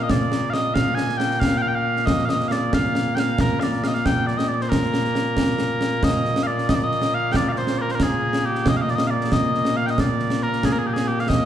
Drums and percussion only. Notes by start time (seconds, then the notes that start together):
0.09 concert bass drum, snare
0.32 snare
0.54 snare
0.76 concert bass drum, snare
0.97 snare
1.09 snare
1.20 snare
1.31 snare
1.42 concert bass drum, snare
1.96 snare
2.07 concert bass drum, snare
2.18 snare
2.29 snare
2.40 snare
2.51 snare
2.73 concert bass drum, snare
2.95 snare
3.17 snare
3.38 concert bass drum, snare
3.61 snare
3.73 snare
3.84 snare
3.95 snare
4.06 concert bass drum, snare
4.28 snare
4.39 snare
4.61 snare
4.72 concert bass drum, snare
4.83 snare
4.94 snare
5.05 snare
5.15 snare
5.37 concert bass drum, snare
5.59 snare
5.81 snare
6.03 concert bass drum, snare
6.25 snare
6.36 snare
6.58 snare
6.69 concert bass drum, snare
6.91 snare
7.02 snare
7.34 concert bass drum, snare
7.56 snare
7.67 snare
7.89 snare
8.00 concert bass drum, snare
8.33 snare
8.55 snare
8.66 concert bass drum, snare
8.88 snare
8.98 snare
9.21 snare
9.32 concert bass drum, snare
9.54 snare
9.65 snare
9.88 snare
9.98 concert bass drum, snare
10.19 snare
10.30 snare
10.53 snare
10.63 concert bass drum, snare
10.96 snare
11.19 snare
11.30 concert bass drum, snare